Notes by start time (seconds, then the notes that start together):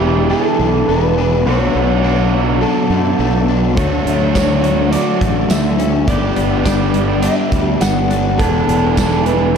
Already playing: E1 E3 B3 D4 G4 G#4 B4
0.30 E3 B3 D4 G#4 A4
0.59 B1 E3 B3 D4 G#4
0.89 E1 E3 B3 D4 G#4 B4
1.17 B3 D4 G#4
1.45 B1 B2 F#3 A3 B3 D4 F#4 C#5
1.75 B1 A3
2.04 F#3 B3 D4 F#4
2.33 F#4
2.61 F#3 B3 D4 F#4 A4
2.90 F#2 A3 B3 D4 F#4
3.19 B1 F#3 A3 B3 D4 F#4
3.48 B3 D4 F#4
3.77 D2 D3 F#3 A3 D4 F#4 C#5, kick, closed hi-hat
4.06 D2 A3, closed hi-hat
4.34 F#3 A3 D4 F#4 C#5, kick, snare, closed hi-hat, tambourine
4.64 F#4, closed hi-hat
4.91 F#3 A3 D4 F#4 D5, closed hi-hat
5.21 A1 A3 D4 F#4, kick, closed hi-hat
5.49 D2 F#3 A3 D4 F#4 E5, snare, closed hi-hat, tambourine
5.77 A3 C#4 D4 F#4, closed hi-hat
6.07 G1 G3 B3 D4 G4 D5, kick, closed hi-hat
6.36 G1 B3, closed hi-hat
6.64 G3 B3 D4 G4 D5, kick, snare, closed hi-hat, tambourine
6.94 closed hi-hat
7.22 G3 B3 D4 G4 E5, closed hi-hat
7.52 D2 B3 D4 G4, kick, closed hi-hat
7.80 G1 G3 B3 D4 G4 F#5, snare, closed hi-hat, tambourine
8.10 B3 D4 G4, closed hi-hat
8.38 E1 E3 B3 D4 G#4 A4, kick, closed hi-hat
8.68 E1 B3, closed hi-hat
8.97 E3 B3 D4 G#4 A4, kick, snare, closed hi-hat, tambourine
9.26 B4, closed hi-hat